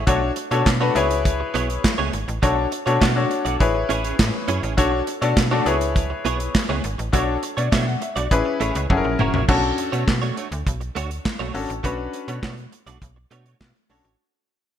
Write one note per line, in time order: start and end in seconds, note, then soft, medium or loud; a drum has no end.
0.00 0.20 E5 medium
0.07 0.31 B1 loud
0.07 0.20 A3 medium
0.07 0.29 D4 medium
0.07 0.20 D4 medium
0.07 0.29 F#4 medium
0.07 0.21 F#4 medium
0.07 0.30 A4 medium
0.07 0.30 C#5 loud
0.07 0.21 C#5 medium
0.07 kick loud
0.07 closed hi-hat loud
0.22 muted clean electric guitar stroke soft
0.36 muted clean electric guitar stroke soft
0.36 closed hi-hat medium
0.51 0.63 B2 medium
0.51 0.62 A3 soft
0.51 0.66 D4 medium
0.51 0.62 D4 medium
0.51 0.66 F#4 medium
0.51 0.62 F#4 medium
0.51 0.66 A4 medium
0.51 0.62 C#5 medium
0.51 0.67 C#5 medium
0.51 closed hi-hat medium
0.66 0.90 B2 loud
0.66 kick loud
0.66 snare medium
0.66 clap medium
0.66 closed hi-hat medium
0.80 0.94 A3 medium
0.80 0.95 D4 medium
0.80 0.94 D4 medium
0.80 0.95 F#4 medium
0.80 0.94 F#4 medium
0.80 0.95 A4 medium
0.80 0.94 B4 loud
0.80 0.94 C#5 medium
0.95 1.44 C#2 loud
0.95 1.06 B3 medium
0.95 1.89 E4 loud
0.95 1.06 E4 medium
0.95 1.90 G#4 medium
0.95 1.06 G#4 medium
0.95 1.90 B4 medium
0.95 1.90 C#5 loud
0.95 1.06 C#5 medium
0.95 closed hi-hat medium
1.11 closed hi-hat medium
1.25 kick loud
1.25 closed hi-hat medium
1.40 muted clean electric guitar stroke soft
1.54 1.78 B1 medium
1.54 1.67 B3 medium
1.54 1.67 E4 medium
1.54 1.68 G#4 medium
1.54 1.68 C#5 loud
1.54 closed hi-hat medium
1.69 muted clean electric guitar stroke soft
1.69 closed hi-hat medium
1.84 muted clean electric guitar stroke soft
1.84 kick loud
1.84 snare loud
1.84 clap medium
1.84 closed hi-hat medium
1.98 2.10 C#2 medium
1.98 2.12 B3 medium
1.98 2.12 E4 medium
1.98 2.11 G#4 medium
1.98 2.11 C#5 medium
2.13 2.25 G#1 medium
2.13 muted clean electric guitar stroke soft
2.13 closed hi-hat medium
2.28 2.40 A1 medium
2.28 muted clean electric guitar stroke soft
2.28 closed hi-hat medium
2.42 2.67 B1 loud
2.42 2.55 A3 medium
2.42 2.65 D4 medium
2.42 2.55 D4 medium
2.42 2.65 F#4 medium
2.42 2.56 F#4 medium
2.42 2.65 A4 medium
2.42 2.65 C#5 loud
2.42 2.56 C#5 medium
2.42 kick loud
2.42 closed hi-hat medium
2.57 muted clean electric guitar stroke soft
2.71 muted clean electric guitar stroke soft
2.71 closed hi-hat medium
2.86 2.99 B2 medium
2.86 2.97 A3 medium
2.86 3.01 D4 medium
2.86 2.97 D4 medium
2.86 3.02 F#4 medium
2.86 2.97 F#4 medium
2.86 3.02 A4 medium
2.86 2.96 C#5 medium
2.86 3.02 C#5 medium
2.86 closed hi-hat medium
3.01 3.25 B2 loud
3.01 3.14 A3 medium
3.01 3.14 D4 medium
3.01 3.14 F#4 medium
3.01 3.15 C#5 medium
3.01 kick loud
3.01 snare medium
3.01 clap medium
3.01 closed hi-hat medium
3.16 3.60 D4 medium
3.16 3.60 F#4 medium
3.16 3.60 A4 medium
3.16 3.59 C#5 medium
3.16 muted clean electric guitar stroke soft
3.30 muted clean electric guitar stroke soft
3.30 closed hi-hat medium
3.45 3.57 B1 medium
3.45 3.56 A3 soft
3.45 3.56 D4 medium
3.45 3.55 F#4 medium
3.45 3.55 D5 medium
3.45 closed hi-hat medium
3.60 3.84 A1 loud
3.60 4.54 E4 medium
3.60 4.54 G#4 medium
3.60 4.54 B4 medium
3.60 4.55 C#5 medium
3.60 muted clean electric guitar stroke soft
3.60 kick loud
3.60 closed hi-hat medium
3.75 muted clean electric guitar stroke soft
3.89 4.14 A1 medium
3.89 4.02 C#4 medium
3.89 4.02 E4 loud
3.89 4.03 G#4 medium
3.89 4.03 C#5 medium
3.89 closed hi-hat medium
4.04 4.15 C#4 medium
4.04 4.15 E4 medium
4.04 4.14 G#4 medium
4.04 4.14 C#5 medium
4.04 closed hi-hat medium
4.19 4.31 A2 loud
4.19 kick loud
4.19 snare loud
4.19 clap medium
4.19 closed hi-hat medium
4.34 muted clean electric guitar stroke medium
4.48 4.60 F#2 medium
4.48 4.61 C#4 medium
4.48 4.61 E4 loud
4.48 4.62 G#4 loud
4.48 4.62 C#5 loud
4.48 closed hi-hat medium
4.63 4.79 A1 medium
4.63 4.74 C#4 medium
4.63 4.74 E4 medium
4.63 4.73 G#4 medium
4.63 4.73 C#5 medium
4.63 closed hi-hat medium
4.77 5.02 B1 loud
4.77 4.90 A3 medium
4.77 5.00 D4 medium
4.77 4.91 D4 medium
4.77 5.00 F#4 medium
4.77 4.91 F#4 medium
4.77 5.00 A4 medium
4.77 5.00 C#5 loud
4.77 4.91 C#5 medium
4.77 kick medium
4.77 closed hi-hat medium
4.93 muted clean electric guitar stroke soft
5.07 muted clean electric guitar stroke soft
5.07 closed hi-hat medium
5.21 5.34 B2 medium
5.21 5.33 A3 soft
5.21 5.37 D4 medium
5.21 5.33 D4 soft
5.21 5.37 F#4 medium
5.21 5.32 F#4 medium
5.21 5.37 A4 medium
5.21 5.32 C#5 medium
5.21 5.37 D5 medium
5.21 closed hi-hat medium
5.37 5.61 B2 loud
5.37 kick loud
5.37 snare loud
5.37 clap medium
5.37 closed hi-hat medium
5.51 5.65 A3 medium
5.51 5.66 D4 medium
5.51 5.65 D4 medium
5.51 5.66 F#4 medium
5.51 5.65 F#4 medium
5.51 5.66 A4 medium
5.51 5.64 C#5 medium
5.51 5.66 D5 medium
5.65 6.14 C#2 medium
5.65 5.76 B3 medium
5.65 6.60 E4 medium
5.65 5.76 E4 medium
5.65 6.60 G#4 medium
5.65 5.77 G#4 medium
5.65 6.60 B4 medium
5.65 6.60 C#5 loud
5.65 5.77 C#5 medium
5.65 closed hi-hat medium
5.81 muted clean electric guitar stroke medium
5.81 closed hi-hat medium
5.96 kick loud
5.96 closed hi-hat medium
6.10 muted clean electric guitar stroke soft
6.25 6.49 B1 medium
6.25 6.38 B3 medium
6.25 6.38 E4 loud
6.25 6.38 G#4 medium
6.25 6.38 C#5 loud
6.25 closed hi-hat medium
6.40 muted clean electric guitar stroke soft
6.40 closed hi-hat medium
6.54 muted clean electric guitar stroke soft
6.54 kick loud
6.54 snare loud
6.54 clap medium
6.54 closed hi-hat medium
6.69 6.81 C#2 loud
6.69 6.83 B3 medium
6.69 6.82 E4 medium
6.69 6.82 G#4 medium
6.69 6.82 C#5 medium
6.84 6.96 G#1 medium
6.84 muted clean electric guitar stroke soft
6.84 closed hi-hat medium
6.98 7.11 A1 medium
6.98 muted clean electric guitar stroke medium
6.98 closed hi-hat soft
7.12 7.37 B1 loud
7.12 7.26 A3 medium
7.12 7.35 D4 loud
7.12 7.26 D4 medium
7.12 7.35 F#4 medium
7.12 7.27 F#4 medium
7.12 7.36 A4 medium
7.12 7.36 C#5 medium
7.12 7.27 C#5 medium
7.12 kick medium
7.12 closed hi-hat medium
7.28 muted clean electric guitar stroke medium
7.43 muted clean electric guitar stroke soft
7.43 closed hi-hat medium
7.57 7.69 B2 medium
7.57 7.68 A3 soft
7.57 7.68 D4 medium
7.57 7.67 F#4 soft
7.57 7.67 C#5 medium
7.57 7.71 D5 medium
7.57 closed hi-hat medium
7.71 7.96 B2 loud
7.71 7.85 A3 medium
7.71 7.85 D4 medium
7.71 7.85 F#4 medium
7.71 7.85 C#5 medium
7.71 7.86 E5 medium
7.71 kick loud
7.71 snare medium
7.71 clap medium
7.71 closed hi-hat medium
7.86 8.01 F#5 medium
7.86 muted clean electric guitar stroke soft
8.01 8.16 E5 medium
8.01 muted clean electric guitar stroke soft
8.01 closed hi-hat medium
8.16 8.28 B1 medium
8.16 8.27 A3 medium
8.16 8.27 D4 medium
8.16 8.26 F#4 medium
8.16 8.26 D5 medium
8.16 8.45 D5 medium
8.16 closed hi-hat medium
8.31 8.43 A1 loud
8.31 8.78 C#4 medium
8.31 8.78 E4 medium
8.31 8.78 G#4 medium
8.31 8.78 B4 loud
8.31 muted clean electric guitar stroke soft
8.31 kick loud
8.31 closed hi-hat medium
8.45 muted clean electric guitar stroke soft
8.60 8.72 A1 medium
8.60 8.73 A3 medium
8.60 8.73 E4 medium
8.60 8.74 G#4 medium
8.60 8.74 C#5 medium
8.60 closed hi-hat medium
8.75 8.87 C#2 medium
8.75 8.86 A3 soft
8.75 8.86 E4 soft
8.75 8.85 G#4 medium
8.75 8.85 C#5 medium
8.75 closed hi-hat medium
8.90 9.02 F#1 loud
8.90 9.37 C#4 medium
8.90 9.37 E4 medium
8.90 9.37 G#4 medium
8.90 8.97 A4 medium
8.90 9.17 F#5 medium
8.90 muted clean electric guitar stroke soft
8.90 kick loud
8.90 high tom medium
8.97 9.40 A#4 medium
9.04 9.17 A#1 medium
9.04 muted clean electric guitar stroke soft
9.19 9.31 F#1 medium
9.19 9.32 A#3 medium
9.19 9.32 E4 medium
9.19 9.33 F#4 medium
9.19 9.33 C#5 loud
9.19 9.47 A#5 medium
9.19 mid tom medium
9.34 9.46 A#1 medium
9.34 9.45 A#3 medium
9.34 9.44 E4 medium
9.34 9.44 F#4 medium
9.34 9.44 C#5 medium
9.34 floor tom medium
9.48 9.73 B1 loud
9.48 9.61 A3 medium
9.48 10.08 C#4 medium
9.48 10.08 D4 medium
9.48 9.62 D4 medium
9.48 10.09 F#4 medium
9.48 9.62 F#4 medium
9.48 10.09 A4 medium
9.48 9.62 C#5 medium
9.48 kick loud
9.48 crash loud
9.63 muted clean electric guitar stroke soft
9.78 muted clean electric guitar stroke soft
9.78 closed hi-hat medium
9.92 10.05 B2 medium
9.92 10.03 A3 soft
9.92 10.03 D4 soft
9.92 10.03 F#4 medium
9.92 10.03 C#5 medium
9.92 closed hi-hat medium
10.08 10.31 B2 loud
10.08 muted clean electric guitar stroke soft
10.08 kick loud
10.08 snare loud
10.08 clap medium
10.22 10.35 A3 medium
10.22 10.35 D4 medium
10.22 10.35 F#4 medium
10.22 10.35 C#5 medium
10.22 closed hi-hat soft
10.36 10.47 A3 medium
10.36 10.47 D4 medium
10.36 10.47 F#4 medium
10.36 10.47 C#5 medium
10.36 closed hi-hat medium
10.52 10.64 D2 medium
10.52 muted clean electric guitar stroke soft
10.52 closed hi-hat medium
10.67 10.90 B1 loud
10.67 kick loud
10.67 closed hi-hat medium
10.81 muted clean electric guitar stroke soft
10.81 closed hi-hat soft
10.95 11.20 D2 medium
10.95 11.08 A3 medium
10.95 11.09 D4 medium
10.95 11.09 F#4 loud
10.95 11.09 C#5 loud
10.95 closed hi-hat medium
11.10 muted clean electric guitar stroke soft
11.10 closed hi-hat medium
11.25 muted clean electric guitar stroke soft
11.25 kick loud
11.25 snare loud
11.25 clap medium
11.39 11.52 B1 medium
11.39 11.53 A3 medium
11.39 11.53 D4 medium
11.39 11.53 F#4 medium
11.39 11.52 C#5 loud
11.54 11.66 G#1 medium
11.54 11.69 C#4 medium
11.54 11.69 D4 medium
11.54 11.69 F#4 medium
11.54 11.70 A4 medium
11.54 muted clean electric guitar stroke soft
11.54 open hi-hat medium
11.69 11.81 A1 medium
11.69 muted clean electric guitar stroke medium
11.69 closed hi-hat medium
11.83 12.08 B1 loud
11.83 11.96 A3 medium
11.83 12.43 C#4 medium
11.83 12.43 D4 medium
11.83 11.97 D4 medium
11.83 12.44 F#4 medium
11.83 11.97 F#4 medium
11.83 12.44 B4 medium
11.83 11.97 C#5 medium
11.83 kick medium
11.83 closed hi-hat loud
11.98 muted clean electric guitar stroke soft
12.13 muted clean electric guitar stroke soft
12.13 closed hi-hat medium
12.28 12.40 B2 medium
12.28 12.39 A3 soft
12.28 12.39 D4 medium
12.28 12.38 F#4 medium
12.28 12.38 C#5 medium
12.28 closed hi-hat medium
12.43 12.67 B2 loud
12.43 12.56 A3 medium
12.43 12.56 D4 medium
12.43 12.56 F#4 medium
12.43 12.56 C#5 medium
12.43 kick loud
12.43 snare loud
12.43 clap medium
12.57 muted clean electric guitar stroke soft
12.57 closed hi-hat soft
12.72 muted clean electric guitar stroke soft
12.72 closed hi-hat medium
12.86 12.99 B1 medium
12.86 12.97 A3 medium
12.86 12.97 D4 medium
12.86 12.97 F#4 medium
12.86 12.97 D5 medium
12.86 closed hi-hat medium
13.01 13.26 B1 loud
13.01 muted clean electric guitar stroke soft
13.01 kick loud
13.01 closed hi-hat medium
13.16 muted clean electric guitar stroke soft
13.31 13.55 B2 medium
13.31 13.44 A3 medium
13.31 13.44 D4 medium
13.31 13.44 F#4 medium
13.31 13.44 C#5 loud
13.31 closed hi-hat medium
13.45 13.56 A3 medium
13.45 13.56 D4 medium
13.45 13.56 F#4 medium
13.45 13.56 C#5 medium
13.45 closed hi-hat medium
13.60 13.72 B2 loud
13.60 muted clean electric guitar stroke soft
13.60 kick loud
13.60 snare loud
13.60 clap medium
13.75 muted clean electric guitar stroke soft
13.75 closed hi-hat soft
13.89 14.02 B1 medium
13.89 14.03 A3 medium
13.89 14.04 C#4 medium
13.89 14.05 D4 medium
13.89 14.03 D4 medium
13.89 14.05 F#4 medium
13.89 14.03 F#4 medium
13.89 14.05 A4 medium
13.89 14.03 C#5 medium
13.89 open hi-hat medium
14.04 14.16 A1 medium
14.04 14.15 A3 medium
14.04 14.15 D4 medium
14.04 14.15 F#4 medium
14.04 14.14 C#5 medium
14.04 closed hi-hat medium